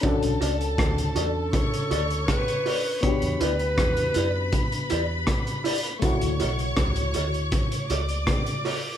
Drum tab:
HH |xxxxxxx-xxxxxxo-|xxxxxxx-xxx-xxox|xxxxxxxxxxxxxxo-|
SD |----r-------r---|----r-------r---|----r-------r---|
BD |o---o---o---o---|o---o---o---o---|o---o---o---o---|